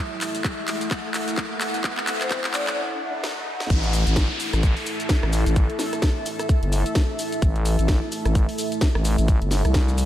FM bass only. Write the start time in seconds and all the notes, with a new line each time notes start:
3.70 A1
4.07 A1
4.53 A1
5.23 A1
5.46 A1
6.63 G1
7.42 A1
7.79 A1
8.25 A1
8.95 A1
9.18 A1
9.42 G1
9.65 C2